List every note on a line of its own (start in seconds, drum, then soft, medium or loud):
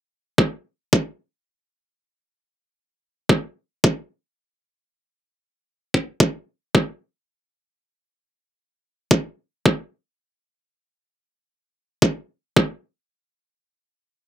0.38 kick loud
0.93 kick medium
3.29 kick loud
3.84 kick loud
5.94 kick medium
6.20 kick loud
6.75 kick loud
9.11 kick loud
9.66 kick medium
12.02 kick loud
12.56 kick loud